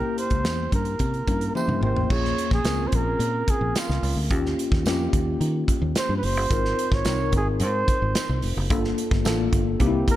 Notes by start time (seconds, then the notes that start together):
Already playing: A#3 C#4 E4 G4 A#4
0.18 C5, closed hi-hat
0.30 C#2, kick, closed hi-hat
0.44 E2, snare, tambourine
0.72 G2 A#4, kick, closed hi-hat
0.85 closed hi-hat
0.99 C3, kick, closed hi-hat
1.14 closed hi-hat
1.27 G2 A#3 C#4 E4 A#4, kick, closed hi-hat
1.41 closed hi-hat
1.55 A#3 C#4 E4 G4 C5 E5, high tom, tambourine
1.68 G2, mid tom
1.81 G#1 C5 G5, mid tom
1.96 A1, floor tom
2.10 A#1 A#3 C#4 F4 G#4 C#5, kick, crash
2.25 snare
2.38 closed hi-hat
2.51 A#1 G#4, kick, snare
2.64 C#2 C4 C#4 F4 A#4, snare, closed hi-hat, tambourine
2.87 C5
2.92 A#1 A#4, kick, closed hi-hat
3.19 A#2, closed hi-hat
3.48 G#4, kick, closed hi-hat
3.61 A#1
3.75 F4, snare, closed hi-hat, tambourine
3.89 C#2, snare
4.03 C#2, open hi-hat
4.16 D2
4.30 D#2 A#3 C#4 F4 G4, kick, closed hi-hat
4.46 snare
4.59 closed hi-hat
4.72 D#2, kick, snare
4.85 F2 A#3 C#4 F4 G4, snare, closed hi-hat, tambourine
5.13 D#2, kick, closed hi-hat
5.41 D#3, closed hi-hat
5.68 kick, closed hi-hat
5.82 D#2
5.95 C5, snare, closed hi-hat, tambourine
6.09 G2
6.17 B4
6.23 F#1 C5, open hi-hat
6.37 G1
6.51 G#1 C4 D#4 F4 A#4, kick, closed hi-hat
6.65 snare
6.79 closed hi-hat
6.92 G#1 C#5, kick, snare
7.05 C2 C4 D#4 F4 A#4, snare, closed hi-hat, tambourine
7.32 G#1 G#4, kick, closed hi-hat
7.60 G#2 C5, closed hi-hat
7.88 kick, closed hi-hat
8.02 G#1
8.15 snare, closed hi-hat, tambourine
8.29 C2
8.42 F1, open hi-hat
8.57 F#1
8.70 G1 A#3 D4 F4 A4, kick, closed hi-hat
8.84 snare
8.98 closed hi-hat
9.11 G1, kick, snare
9.25 A1 A#3 D4 F4 A4, snare, closed hi-hat, tambourine
9.53 G1, kick, closed hi-hat
9.80 C2 A#3 C4 D#4 G4, kick, closed hi-hat
9.87 E4
10.08 A#4, kick, closed hi-hat